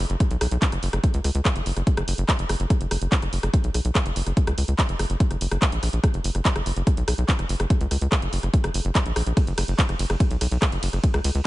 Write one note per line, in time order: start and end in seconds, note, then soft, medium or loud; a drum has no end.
0.10 0.16 F#1 medium
0.10 closed hi-hat medium
0.20 kick loud
0.20 cross-stick soft
0.20 closed hi-hat medium
0.31 0.37 B1 medium
0.31 closed hi-hat medium
0.41 0.47 B1 loud
0.41 cross-stick medium
0.41 open hi-hat loud
0.51 0.58 B1 medium
0.51 closed hi-hat medium
0.62 kick loud
0.62 clap loud
0.62 closed hi-hat medium
0.72 0.78 F#1 medium
0.72 cross-stick soft
0.72 closed hi-hat medium
0.83 0.89 F#1 loud
0.83 open hi-hat medium
0.93 0.99 F#1 medium
0.93 cross-stick medium
0.93 closed hi-hat medium
1.04 kick loud
1.04 closed hi-hat medium
1.14 1.20 C#2 medium
1.14 closed hi-hat medium
1.24 1.31 C#2 loud
1.24 cross-stick soft
1.24 open hi-hat loud
1.35 1.41 C#2 medium
1.35 closed hi-hat medium
1.45 kick loud
1.45 cross-stick medium
1.45 clap loud
1.45 closed hi-hat medium
1.56 1.62 F#1 medium
1.56 closed hi-hat medium
1.66 1.72 F#1 loud
1.66 open hi-hat medium
1.77 1.83 F#1 medium
1.77 cross-stick soft
1.77 closed hi-hat medium
1.87 kick loud
1.87 closed hi-hat medium
1.97 2.03 F#1 medium
1.97 cross-stick medium
1.97 closed hi-hat medium
2.08 2.14 F#1 loud
2.08 open hi-hat loud
2.18 2.24 F#1 loud
2.18 closed hi-hat medium
2.29 kick loud
2.29 cross-stick soft
2.29 clap loud
2.29 closed hi-hat medium
2.39 2.45 F#1 medium
2.39 closed hi-hat medium
2.49 2.56 F#1 loud
2.49 cross-stick medium
2.49 open hi-hat loud
2.60 2.66 F#1 medium
2.60 closed hi-hat medium
2.70 kick loud
2.70 cross-stick soft
2.70 closed hi-hat medium
2.81 2.87 F#1 medium
2.81 closed hi-hat medium
2.91 2.97 F#1 loud
2.91 cross-stick medium
2.91 open hi-hat loud
3.02 3.08 F#1 medium
3.02 closed hi-hat medium
3.12 kick loud
3.12 clap loud
3.12 closed hi-hat medium
3.22 3.28 F#1 medium
3.22 cross-stick soft
3.22 closed hi-hat medium
3.33 3.39 F#1 loud
3.33 open hi-hat medium
3.43 3.49 F#1 loud
3.43 cross-stick medium
3.43 closed hi-hat medium
3.54 kick loud
3.54 closed hi-hat medium
3.64 3.70 B1 medium
3.64 closed hi-hat medium
3.74 3.81 B1 loud
3.74 cross-stick soft
3.74 open hi-hat loud
3.85 3.91 B1 loud
3.85 closed hi-hat medium
3.95 kick loud
3.95 cross-stick medium
3.95 clap loud
3.95 closed hi-hat medium
4.06 4.12 F#1 medium
4.06 closed hi-hat medium
4.16 4.22 F#1 loud
4.16 open hi-hat loud
4.27 4.33 F#1 medium
4.27 cross-stick soft
4.27 closed hi-hat medium
4.37 kick loud
4.37 closed hi-hat medium
4.47 4.53 C#2 medium
4.47 cross-stick medium
4.47 closed hi-hat medium
4.58 4.64 C#2 loud
4.58 open hi-hat loud
4.68 4.74 C#2 medium
4.68 closed hi-hat medium
4.79 kick loud
4.79 cross-stick soft
4.79 clap loud
4.79 closed hi-hat medium
4.89 4.95 F#1 medium
4.89 closed hi-hat medium
4.99 5.06 F#1 loud
4.99 cross-stick medium
4.99 open hi-hat medium
5.10 5.16 F#1 loud
5.10 closed hi-hat medium
5.20 kick loud
5.20 closed hi-hat medium
5.31 5.37 F#1 medium
5.31 cross-stick soft
5.31 closed hi-hat medium
5.41 5.47 F#1 loud
5.41 open hi-hat loud
5.51 5.58 F#1 loud
5.51 cross-stick medium
5.51 closed hi-hat medium
5.62 kick loud
5.62 clap loud
5.62 closed hi-hat medium
5.72 5.78 A#1 medium
5.72 closed hi-hat medium
5.83 5.89 A#1 loud
5.83 cross-stick soft
5.83 open hi-hat loud
5.93 5.99 A#1 medium
5.93 closed hi-hat medium
6.04 kick loud
6.04 cross-stick medium
6.04 closed hi-hat medium
6.14 6.20 F#1 medium
6.14 closed hi-hat soft
6.24 6.31 F#1 loud
6.24 open hi-hat loud
6.35 6.41 F#1 medium
6.35 cross-stick soft
6.35 closed hi-hat medium
6.45 kick loud
6.45 clap loud
6.45 closed hi-hat medium
6.56 6.62 F#1 medium
6.56 cross-stick medium
6.56 closed hi-hat medium
6.66 6.72 F#1 loud
6.66 open hi-hat medium
6.76 6.83 F#1 medium
6.76 closed hi-hat medium
6.87 kick loud
6.87 cross-stick soft
6.87 closed hi-hat medium
6.97 7.03 B1 medium
6.97 closed hi-hat medium
7.08 7.14 B1 medium
7.08 cross-stick medium
7.08 open hi-hat loud
7.18 7.24 B1 medium
7.18 closed hi-hat medium
7.29 kick loud
7.29 clap loud
7.29 closed hi-hat medium
7.39 7.45 F#1 medium
7.39 cross-stick soft
7.39 closed hi-hat medium
7.49 7.56 F#1 loud
7.49 open hi-hat loud
7.60 7.66 F#1 loud
7.60 cross-stick medium
7.60 closed hi-hat soft
7.70 kick loud
7.70 closed hi-hat medium
7.81 7.87 C#2 loud
7.81 closed hi-hat soft
7.91 7.97 C#2 loud
7.91 cross-stick soft
7.91 open hi-hat loud
8.01 8.08 C#2 medium
8.01 closed hi-hat medium
8.12 kick loud
8.12 cross-stick medium
8.12 clap loud
8.12 closed hi-hat medium
8.22 8.28 F#1 medium
8.22 closed hi-hat medium
8.33 8.39 F#1 loud
8.33 open hi-hat medium
8.43 8.49 F#1 loud
8.43 cross-stick soft
8.43 closed hi-hat soft
8.54 kick loud
8.54 closed hi-hat medium
8.64 8.70 F#1 medium
8.64 cross-stick medium
8.64 closed hi-hat medium
8.74 8.81 F#1 loud
8.74 open hi-hat loud
8.85 8.91 F#1 loud
8.85 closed hi-hat medium
8.95 kick loud
8.95 cross-stick soft
8.95 clap loud
8.95 closed hi-hat medium
9.06 9.12 A#1 medium
9.06 closed hi-hat medium
9.16 9.22 A#1 loud
9.16 cross-stick medium
9.16 open hi-hat loud
9.27 9.33 A#1 medium
9.27 closed hi-hat soft
9.37 kick loud
9.37 cross-stick soft
9.37 closed hi-hat medium
9.37 ride medium
9.47 9.53 F#1 medium
9.47 closed hi-hat medium
9.58 9.64 F#1 loud
9.58 cross-stick medium
9.58 open hi-hat loud
9.58 ride medium
9.68 9.74 F#1 medium
9.68 closed hi-hat medium
9.79 kick loud
9.79 clap loud
9.79 closed hi-hat medium
9.79 ride medium
9.89 9.95 F#1 medium
9.89 cross-stick soft
9.89 closed hi-hat medium
9.99 10.06 F#1 loud
9.99 open hi-hat medium
9.99 ride medium
10.10 10.16 F#1 medium
10.10 cross-stick medium
10.10 closed hi-hat soft
10.20 kick loud
10.20 closed hi-hat medium
10.20 ride medium
10.31 10.37 B1 medium
10.31 closed hi-hat soft
10.41 10.47 B1 loud
10.41 cross-stick soft
10.41 open hi-hat loud
10.41 ride medium
10.52 10.58 B1 loud
10.52 closed hi-hat medium
10.62 kick loud
10.62 cross-stick medium
10.62 clap loud
10.62 closed hi-hat medium
10.62 ride medium
10.72 10.78 F#1 medium
10.72 closed hi-hat medium
10.83 10.89 F#1 loud
10.83 open hi-hat loud
10.83 ride medium
10.93 10.99 F#1 medium
10.93 cross-stick soft
10.93 closed hi-hat soft
11.04 kick loud
11.04 closed hi-hat medium
11.04 ride medium
11.14 11.20 C#2 medium
11.14 cross-stick medium
11.14 closed hi-hat medium
11.24 11.31 C#2 loud
11.24 open hi-hat loud
11.24 ride medium
11.35 11.41 C#2 medium
11.35 closed hi-hat medium